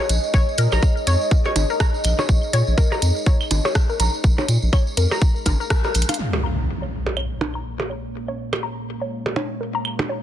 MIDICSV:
0, 0, Header, 1, 7, 480
1, 0, Start_track
1, 0, Key_signature, -5, "minor"
1, 0, Tempo, 487805
1, 333, Time_signature, 4, 2, 24, 8
1, 10064, End_track
2, 0, Start_track
2, 0, Title_t, "Ambient pad"
2, 0, Program_c, 0, 92
2, 0, Note_on_c, 0, 68, 85
2, 0, Note_on_c, 0, 73, 71
2, 0, Note_on_c, 0, 75, 78
2, 6093, Note_off_c, 0, 68, 0
2, 6093, Note_off_c, 0, 73, 0
2, 6093, Note_on_c, 0, 58, 76
2, 6120, Note_off_c, 0, 75, 0
2, 6333, Note_on_c, 0, 73, 74
2, 6485, Note_on_c, 0, 68, 75
2, 6794, Note_on_c, 0, 77, 73
2, 10064, Note_off_c, 0, 58, 0
2, 10064, Note_off_c, 0, 68, 0
2, 10064, Note_off_c, 0, 73, 0
2, 10064, Note_off_c, 0, 77, 0
2, 10064, End_track
3, 0, Start_track
3, 0, Title_t, "Synth pluck"
3, 0, Program_c, 1, 84
3, 332, Note_on_c, 1, 73, 100
3, 386, Note_off_c, 1, 73, 0
3, 573, Note_on_c, 1, 70, 74
3, 652, Note_off_c, 1, 70, 0
3, 713, Note_on_c, 1, 82, 102
3, 735, Note_off_c, 1, 82, 0
3, 1054, Note_on_c, 1, 73, 76
3, 1106, Note_off_c, 1, 73, 0
3, 1433, Note_on_c, 1, 73, 97
3, 1471, Note_off_c, 1, 73, 0
3, 1672, Note_on_c, 1, 70, 74
3, 1730, Note_off_c, 1, 70, 0
3, 1773, Note_on_c, 1, 82, 101
3, 1805, Note_off_c, 1, 82, 0
3, 2152, Note_on_c, 1, 73, 75
3, 2190, Note_off_c, 1, 73, 0
3, 2492, Note_on_c, 1, 73, 102
3, 2546, Note_off_c, 1, 73, 0
3, 2732, Note_on_c, 1, 70, 86
3, 2812, Note_off_c, 1, 70, 0
3, 2872, Note_on_c, 1, 82, 97
3, 2895, Note_off_c, 1, 82, 0
3, 3212, Note_on_c, 1, 73, 85
3, 3266, Note_off_c, 1, 73, 0
3, 3592, Note_on_c, 1, 73, 97
3, 3630, Note_off_c, 1, 73, 0
3, 3832, Note_on_c, 1, 70, 79
3, 3890, Note_off_c, 1, 70, 0
3, 3933, Note_on_c, 1, 82, 100
3, 3965, Note_off_c, 1, 82, 0
3, 4312, Note_on_c, 1, 73, 75
3, 4350, Note_off_c, 1, 73, 0
3, 4653, Note_on_c, 1, 73, 105
3, 4706, Note_off_c, 1, 73, 0
3, 4893, Note_on_c, 1, 70, 75
3, 4973, Note_off_c, 1, 70, 0
3, 5032, Note_on_c, 1, 82, 101
3, 5055, Note_off_c, 1, 82, 0
3, 5373, Note_on_c, 1, 70, 77
3, 5426, Note_off_c, 1, 70, 0
3, 5512, Note_on_c, 1, 70, 74
3, 5551, Note_off_c, 1, 70, 0
3, 5613, Note_on_c, 1, 70, 85
3, 5666, Note_off_c, 1, 70, 0
3, 5752, Note_on_c, 1, 70, 78
3, 5790, Note_off_c, 1, 70, 0
3, 5992, Note_on_c, 1, 77, 75
3, 6050, Note_off_c, 1, 77, 0
3, 6232, Note_on_c, 1, 70, 69
3, 6290, Note_off_c, 1, 70, 0
3, 6333, Note_on_c, 1, 82, 96
3, 6365, Note_off_c, 1, 82, 0
3, 6712, Note_on_c, 1, 73, 71
3, 6750, Note_off_c, 1, 73, 0
3, 7052, Note_on_c, 1, 73, 97
3, 7105, Note_off_c, 1, 73, 0
3, 7292, Note_on_c, 1, 70, 72
3, 7372, Note_off_c, 1, 70, 0
3, 7432, Note_on_c, 1, 82, 94
3, 7455, Note_off_c, 1, 82, 0
3, 7772, Note_on_c, 1, 73, 72
3, 7825, Note_off_c, 1, 73, 0
3, 8151, Note_on_c, 1, 73, 96
3, 8190, Note_off_c, 1, 73, 0
3, 8391, Note_on_c, 1, 70, 72
3, 8449, Note_off_c, 1, 70, 0
3, 8492, Note_on_c, 1, 82, 98
3, 8524, Note_off_c, 1, 82, 0
3, 8871, Note_on_c, 1, 73, 74
3, 8910, Note_off_c, 1, 73, 0
3, 9212, Note_on_c, 1, 73, 96
3, 9266, Note_off_c, 1, 73, 0
3, 9452, Note_on_c, 1, 70, 75
3, 9532, Note_off_c, 1, 70, 0
3, 9591, Note_on_c, 1, 82, 93
3, 9615, Note_off_c, 1, 82, 0
3, 9932, Note_on_c, 1, 73, 78
3, 9986, Note_off_c, 1, 73, 0
3, 10064, End_track
4, 0, Start_track
4, 0, Title_t, "Sub bass"
4, 0, Program_c, 2, 38
4, 93, Note_on_c, 2, 34, 99
4, 181, Note_off_c, 2, 34, 0
4, 332, Note_on_c, 2, 34, 102
4, 421, Note_off_c, 2, 34, 0
4, 571, Note_on_c, 2, 46, 97
4, 661, Note_off_c, 2, 46, 0
4, 711, Note_on_c, 2, 34, 101
4, 775, Note_off_c, 2, 34, 0
4, 1052, Note_on_c, 2, 41, 80
4, 1141, Note_off_c, 2, 41, 0
4, 1532, Note_on_c, 2, 32, 101
4, 1621, Note_off_c, 2, 32, 0
4, 2013, Note_on_c, 2, 34, 99
4, 2102, Note_off_c, 2, 34, 0
4, 2252, Note_on_c, 2, 34, 103
4, 2341, Note_off_c, 2, 34, 0
4, 2492, Note_on_c, 2, 46, 101
4, 2581, Note_off_c, 2, 46, 0
4, 2632, Note_on_c, 2, 34, 98
4, 2696, Note_off_c, 2, 34, 0
4, 2974, Note_on_c, 2, 41, 81
4, 3062, Note_off_c, 2, 41, 0
4, 3452, Note_on_c, 2, 32, 100
4, 3541, Note_off_c, 2, 32, 0
4, 3932, Note_on_c, 2, 34, 100
4, 4021, Note_off_c, 2, 34, 0
4, 4172, Note_on_c, 2, 34, 102
4, 4261, Note_off_c, 2, 34, 0
4, 4412, Note_on_c, 2, 46, 98
4, 4501, Note_off_c, 2, 46, 0
4, 4552, Note_on_c, 2, 34, 98
4, 4616, Note_off_c, 2, 34, 0
4, 4893, Note_on_c, 2, 41, 80
4, 4981, Note_off_c, 2, 41, 0
4, 5372, Note_on_c, 2, 32, 103
4, 5461, Note_off_c, 2, 32, 0
4, 5854, Note_on_c, 2, 34, 97
4, 5942, Note_off_c, 2, 34, 0
4, 10064, End_track
5, 0, Start_track
5, 0, Title_t, "Impact"
5, 0, Program_c, 3, 103
5, 6093, Note_on_c, 3, 60, 65
5, 8013, Note_off_c, 3, 60, 0
5, 10064, End_track
6, 0, Start_track
6, 0, Title_t, "Percussion blips"
6, 712, Note_on_c, 9, 63, 72
6, 811, Note_off_c, 9, 63, 0
6, 1432, Note_on_c, 9, 63, 73
6, 1531, Note_off_c, 9, 63, 0
6, 1533, Note_on_c, 9, 64, 84
6, 1632, Note_off_c, 9, 64, 0
6, 2153, Note_on_c, 9, 63, 74
6, 2153, Note_on_c, 9, 64, 71
6, 2251, Note_off_c, 9, 63, 0
6, 2251, Note_off_c, 9, 64, 0
6, 2872, Note_on_c, 9, 63, 73
6, 2970, Note_off_c, 9, 63, 0
6, 3453, Note_on_c, 9, 64, 85
6, 3551, Note_off_c, 9, 64, 0
6, 3592, Note_on_c, 9, 63, 76
6, 3691, Note_off_c, 9, 63, 0
6, 4313, Note_on_c, 9, 63, 77
6, 4313, Note_on_c, 9, 64, 83
6, 4411, Note_off_c, 9, 63, 0
6, 4411, Note_off_c, 9, 64, 0
6, 5032, Note_on_c, 9, 63, 76
6, 5131, Note_off_c, 9, 63, 0
6, 5372, Note_on_c, 9, 64, 89
6, 5471, Note_off_c, 9, 64, 0
6, 5752, Note_on_c, 9, 63, 76
6, 5851, Note_off_c, 9, 63, 0
6, 5992, Note_on_c, 9, 64, 80
6, 6090, Note_off_c, 9, 64, 0
6, 6232, Note_on_c, 9, 63, 71
6, 6330, Note_off_c, 9, 63, 0
6, 6952, Note_on_c, 9, 63, 70
6, 7050, Note_off_c, 9, 63, 0
6, 7293, Note_on_c, 9, 64, 84
6, 7391, Note_off_c, 9, 64, 0
6, 7672, Note_on_c, 9, 63, 69
6, 7770, Note_off_c, 9, 63, 0
6, 8392, Note_on_c, 9, 63, 71
6, 8490, Note_off_c, 9, 63, 0
6, 9112, Note_on_c, 9, 63, 70
6, 9210, Note_off_c, 9, 63, 0
6, 9212, Note_on_c, 9, 64, 87
6, 9311, Note_off_c, 9, 64, 0
6, 9832, Note_on_c, 9, 63, 73
6, 9832, Note_on_c, 9, 64, 72
6, 9930, Note_off_c, 9, 63, 0
6, 9930, Note_off_c, 9, 64, 0
6, 10064, End_track
7, 0, Start_track
7, 0, Title_t, "Drums"
7, 93, Note_on_c, 9, 42, 91
7, 98, Note_on_c, 9, 54, 89
7, 191, Note_off_c, 9, 42, 0
7, 197, Note_off_c, 9, 54, 0
7, 232, Note_on_c, 9, 54, 35
7, 330, Note_off_c, 9, 54, 0
7, 330, Note_on_c, 9, 54, 51
7, 332, Note_on_c, 9, 36, 109
7, 429, Note_off_c, 9, 54, 0
7, 430, Note_off_c, 9, 36, 0
7, 479, Note_on_c, 9, 54, 26
7, 568, Note_off_c, 9, 54, 0
7, 568, Note_on_c, 9, 54, 77
7, 573, Note_on_c, 9, 42, 86
7, 666, Note_off_c, 9, 54, 0
7, 671, Note_off_c, 9, 42, 0
7, 705, Note_on_c, 9, 54, 42
7, 712, Note_on_c, 9, 75, 63
7, 803, Note_off_c, 9, 54, 0
7, 811, Note_off_c, 9, 75, 0
7, 812, Note_on_c, 9, 36, 112
7, 816, Note_on_c, 9, 54, 47
7, 911, Note_off_c, 9, 36, 0
7, 915, Note_off_c, 9, 54, 0
7, 955, Note_on_c, 9, 54, 22
7, 1053, Note_off_c, 9, 54, 0
7, 1053, Note_on_c, 9, 42, 90
7, 1053, Note_on_c, 9, 54, 89
7, 1151, Note_off_c, 9, 42, 0
7, 1151, Note_off_c, 9, 54, 0
7, 1193, Note_on_c, 9, 54, 37
7, 1291, Note_off_c, 9, 54, 0
7, 1292, Note_on_c, 9, 36, 107
7, 1293, Note_on_c, 9, 54, 48
7, 1390, Note_off_c, 9, 36, 0
7, 1391, Note_off_c, 9, 54, 0
7, 1426, Note_on_c, 9, 54, 23
7, 1524, Note_off_c, 9, 54, 0
7, 1533, Note_on_c, 9, 42, 85
7, 1536, Note_on_c, 9, 54, 89
7, 1631, Note_off_c, 9, 42, 0
7, 1634, Note_off_c, 9, 54, 0
7, 1673, Note_on_c, 9, 54, 34
7, 1770, Note_off_c, 9, 54, 0
7, 1770, Note_on_c, 9, 54, 49
7, 1772, Note_on_c, 9, 36, 108
7, 1773, Note_on_c, 9, 37, 101
7, 1869, Note_off_c, 9, 54, 0
7, 1871, Note_off_c, 9, 36, 0
7, 1871, Note_off_c, 9, 37, 0
7, 1909, Note_on_c, 9, 54, 25
7, 2005, Note_off_c, 9, 54, 0
7, 2005, Note_on_c, 9, 54, 83
7, 2013, Note_on_c, 9, 42, 88
7, 2013, Note_on_c, 9, 75, 65
7, 2103, Note_off_c, 9, 54, 0
7, 2111, Note_off_c, 9, 42, 0
7, 2112, Note_off_c, 9, 75, 0
7, 2151, Note_on_c, 9, 54, 37
7, 2249, Note_off_c, 9, 54, 0
7, 2252, Note_on_c, 9, 36, 108
7, 2255, Note_on_c, 9, 54, 50
7, 2350, Note_off_c, 9, 36, 0
7, 2353, Note_off_c, 9, 54, 0
7, 2392, Note_on_c, 9, 54, 25
7, 2490, Note_off_c, 9, 54, 0
7, 2493, Note_on_c, 9, 42, 87
7, 2496, Note_on_c, 9, 54, 89
7, 2592, Note_off_c, 9, 42, 0
7, 2594, Note_off_c, 9, 54, 0
7, 2628, Note_on_c, 9, 54, 37
7, 2726, Note_off_c, 9, 54, 0
7, 2731, Note_on_c, 9, 54, 51
7, 2732, Note_on_c, 9, 36, 109
7, 2829, Note_off_c, 9, 54, 0
7, 2830, Note_off_c, 9, 36, 0
7, 2874, Note_on_c, 9, 54, 22
7, 2972, Note_off_c, 9, 54, 0
7, 2973, Note_on_c, 9, 42, 89
7, 2974, Note_on_c, 9, 54, 87
7, 3071, Note_off_c, 9, 42, 0
7, 3072, Note_off_c, 9, 54, 0
7, 3113, Note_on_c, 9, 54, 40
7, 3212, Note_off_c, 9, 54, 0
7, 3212, Note_on_c, 9, 36, 113
7, 3217, Note_on_c, 9, 54, 47
7, 3310, Note_off_c, 9, 36, 0
7, 3315, Note_off_c, 9, 54, 0
7, 3351, Note_on_c, 9, 54, 23
7, 3352, Note_on_c, 9, 75, 67
7, 3450, Note_off_c, 9, 54, 0
7, 3450, Note_on_c, 9, 54, 91
7, 3451, Note_off_c, 9, 75, 0
7, 3453, Note_on_c, 9, 42, 84
7, 3549, Note_off_c, 9, 54, 0
7, 3551, Note_off_c, 9, 42, 0
7, 3596, Note_on_c, 9, 54, 36
7, 3692, Note_on_c, 9, 36, 109
7, 3692, Note_on_c, 9, 37, 102
7, 3695, Note_off_c, 9, 54, 0
7, 3697, Note_on_c, 9, 54, 51
7, 3790, Note_off_c, 9, 36, 0
7, 3791, Note_off_c, 9, 37, 0
7, 3795, Note_off_c, 9, 54, 0
7, 3834, Note_on_c, 9, 54, 23
7, 3933, Note_off_c, 9, 54, 0
7, 3933, Note_on_c, 9, 42, 87
7, 3935, Note_on_c, 9, 54, 79
7, 4031, Note_off_c, 9, 42, 0
7, 4033, Note_off_c, 9, 54, 0
7, 4071, Note_on_c, 9, 54, 39
7, 4170, Note_off_c, 9, 54, 0
7, 4170, Note_on_c, 9, 54, 48
7, 4172, Note_on_c, 9, 36, 109
7, 4269, Note_off_c, 9, 54, 0
7, 4270, Note_off_c, 9, 36, 0
7, 4312, Note_on_c, 9, 54, 25
7, 4410, Note_off_c, 9, 54, 0
7, 4413, Note_on_c, 9, 42, 85
7, 4415, Note_on_c, 9, 54, 81
7, 4512, Note_off_c, 9, 42, 0
7, 4513, Note_off_c, 9, 54, 0
7, 4549, Note_on_c, 9, 54, 36
7, 4647, Note_off_c, 9, 54, 0
7, 4652, Note_on_c, 9, 36, 110
7, 4653, Note_on_c, 9, 75, 68
7, 4654, Note_on_c, 9, 54, 50
7, 4751, Note_off_c, 9, 36, 0
7, 4752, Note_off_c, 9, 75, 0
7, 4753, Note_off_c, 9, 54, 0
7, 4793, Note_on_c, 9, 54, 27
7, 4891, Note_off_c, 9, 54, 0
7, 4893, Note_on_c, 9, 42, 87
7, 4894, Note_on_c, 9, 54, 83
7, 4991, Note_off_c, 9, 42, 0
7, 4993, Note_off_c, 9, 54, 0
7, 5038, Note_on_c, 9, 54, 41
7, 5132, Note_off_c, 9, 54, 0
7, 5132, Note_on_c, 9, 36, 112
7, 5132, Note_on_c, 9, 54, 49
7, 5231, Note_off_c, 9, 36, 0
7, 5231, Note_off_c, 9, 54, 0
7, 5274, Note_on_c, 9, 54, 23
7, 5369, Note_off_c, 9, 54, 0
7, 5369, Note_on_c, 9, 54, 87
7, 5372, Note_on_c, 9, 36, 57
7, 5373, Note_on_c, 9, 42, 89
7, 5467, Note_off_c, 9, 54, 0
7, 5471, Note_off_c, 9, 36, 0
7, 5472, Note_off_c, 9, 42, 0
7, 5519, Note_on_c, 9, 54, 40
7, 5612, Note_on_c, 9, 36, 110
7, 5613, Note_on_c, 9, 37, 113
7, 5616, Note_off_c, 9, 54, 0
7, 5616, Note_on_c, 9, 54, 52
7, 5711, Note_off_c, 9, 36, 0
7, 5711, Note_off_c, 9, 37, 0
7, 5715, Note_off_c, 9, 54, 0
7, 5745, Note_on_c, 9, 54, 26
7, 5843, Note_off_c, 9, 54, 0
7, 5849, Note_on_c, 9, 54, 83
7, 5853, Note_on_c, 9, 42, 52
7, 5923, Note_off_c, 9, 42, 0
7, 5923, Note_on_c, 9, 42, 65
7, 5947, Note_off_c, 9, 54, 0
7, 5991, Note_on_c, 9, 54, 35
7, 5992, Note_off_c, 9, 42, 0
7, 5992, Note_on_c, 9, 42, 73
7, 5992, Note_on_c, 9, 75, 69
7, 6042, Note_off_c, 9, 42, 0
7, 6042, Note_on_c, 9, 42, 87
7, 6090, Note_off_c, 9, 54, 0
7, 6090, Note_off_c, 9, 75, 0
7, 6141, Note_off_c, 9, 42, 0
7, 7053, Note_on_c, 9, 75, 63
7, 7151, Note_off_c, 9, 75, 0
7, 8392, Note_on_c, 9, 75, 60
7, 8490, Note_off_c, 9, 75, 0
7, 9692, Note_on_c, 9, 75, 61
7, 9791, Note_off_c, 9, 75, 0
7, 10064, End_track
0, 0, End_of_file